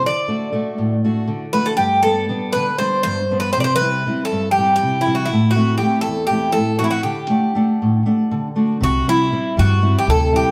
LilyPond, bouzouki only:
\new Staff \with { instrumentName = "Bouzouki" } { \time 7/8 \key c \lydian \tempo 4 = 120 d''2 r4 b'16 a'16 | g'8 a'4 b'8 c''8 c''8. b'16 | c''32 d''32 c''16 b'4 a'8 g'8 g'8 e'16 fis'16 | e'8 fis'8 g'8 a'8 g'8 a'8 fis'32 e'32 fis'16 |
g'2. r8 | fis'8 e'4 fis'8. g'16 a'8 g'8 | }